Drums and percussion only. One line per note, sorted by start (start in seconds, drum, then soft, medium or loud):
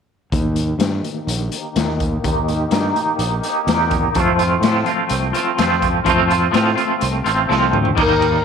0.32 kick medium
0.32 closed hi-hat medium
0.56 closed hi-hat medium
0.80 snare loud
0.80 closed hi-hat medium
1.04 closed hi-hat medium
1.28 closed hi-hat medium
1.52 closed hi-hat medium
1.76 snare loud
1.76 closed hi-hat medium
2.00 kick medium
2.00 closed hi-hat medium
2.24 kick medium
2.24 closed hi-hat medium
2.48 closed hi-hat medium
2.71 snare medium
2.71 closed hi-hat medium
2.96 closed hi-hat soft
3.19 closed hi-hat medium
3.43 closed hi-hat medium
3.68 snare medium
3.68 closed hi-hat medium
3.91 kick medium
3.91 closed hi-hat medium
4.15 kick medium
4.15 closed hi-hat medium
4.39 closed hi-hat medium
4.63 snare loud
4.63 closed hi-hat medium
4.86 closed hi-hat soft
5.09 closed hi-hat medium
5.34 closed hi-hat medium
5.58 snare medium
5.58 closed hi-hat medium
5.82 kick medium
5.82 closed hi-hat medium
6.06 kick medium
6.06 closed hi-hat medium
6.30 closed hi-hat medium
6.54 snare loud
6.54 closed hi-hat medium
6.78 closed hi-hat medium
7.01 closed hi-hat medium
7.26 closed hi-hat medium
7.51 snare soft
7.73 mid tom medium
7.85 floor tom medium
7.97 kick medium
7.97 crash medium
8.22 ride medium